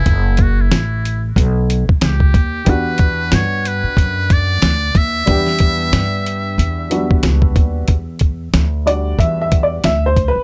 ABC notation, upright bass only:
X:1
M:4/4
L:1/16
Q:"Swing 16ths" 1/4=92
K:Edor
V:1 name="Upright bass" clef=bass
F,,,4 A,,,4 B,,,3 z C,,2 ^D,,2 | E,,4 G,,3 z F,,4 D,,2 ^D,,2 | E,,4 G,,4 E,,4 C,,2 ^D,,2 | [K:Em] E,,4 D,,4 E,,4 D,,3 z |]